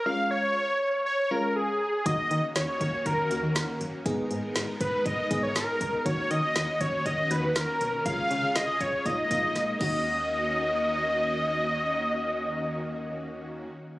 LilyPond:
<<
  \new Staff \with { instrumentName = "Analog synth lead" } { \time 4/4 \key ees \minor \tempo 4 = 120 f''8 des''4. des''8 bes'8 aes'4 | ees''8 ees''8 des''16 des''8. bes'4. r8 | r4. ces''8 ees''8. des''16 bes'4 | des''8 ees''4 des''8 ees''8 ces''8 bes'4 |
f''4 ees''8 des''8 ees''4. ees''8~ | ees''1~ | ees''1 | }
  \new Staff \with { instrumentName = "FM electric piano" } { \time 4/4 \key ees \minor <aes des' f'>4 r4. <aes des' f'>4 r8 | <bes ees' ges'>4 r4. <bes ees' ges'>4 r8 | <ces' ees' aes'>4 r4. <ces' ees' aes'>4 r8 | <bes ees' ges'>4 r4. <bes ees' ges'>4 r8 |
<aes des' f'>4 r4 <bes ees' f'>8 <bes ees' f'>4 <bes ees' ges'>8~ | <bes ees' ges'>1~ | <bes ees' ges'>1 | }
  \new Staff \with { instrumentName = "String machine" } { \time 4/4 \key ees \minor r1 | <ees bes des' ges'>1 | <aes ces' ees' bes'>1 | <ees bes des' ges'>1 |
<des f' aes'>2 <aes bes ees'>4. <ees bes des' ges'>8~ | <ees bes des' ges'>1~ | <ees bes des' ges'>1 | }
  \new Staff \with { instrumentName = "FM bass" } { \clef bass \time 4/4 \key ees \minor r1 | ees,16 r16 ees16 r16 ees,16 r16 ees,16 r16 ees,16 r16 ees,16 ees,16 ees,16 r16 ges,,16 r16 | aes,,16 r16 aes,16 r16 aes,,16 r16 aes,,16 r16 aes,,16 r16 aes,,16 aes,,16 aes,,16 r16 des,16 r16 | ees,16 r16 ees16 r16 ees,16 r16 ees,16 r16 ees,16 r16 ees,16 ees,16 ees,16 r16 ces,16 r16 |
des,16 r16 des16 r16 des,16 r16 des,16 r16 bes,,16 r16 bes,,16 bes,,16 bes,,16 r16 ees,8~ | ees,1~ | ees,1 | }
  \new DrumStaff \with { instrumentName = "Drums" } \drummode { \time 4/4 r4 r4 r4 r4 | <hh bd>8 hh8 <hh sn>8 <hh bd>8 <hh bd>8 hh8 <hh sn>8 hh8 | <hh bd>8 hh8 <hh sn>8 <hh bd>8 <hh bd>8 <hh bd>8 <hh sn>8 <hh bd>8 | <hh bd>8 hh8 <hh sn>8 <hh bd>8 <hh bd>8 hh8 <hh sn>8 hh8 |
<hh bd>8 hh8 <hh sn>8 <hh bd>8 <hh bd>8 <hh bd>8 <hh sn>8 <cymc bd>8 | r4 r4 r4 r4 | r4 r4 r4 r4 | }
>>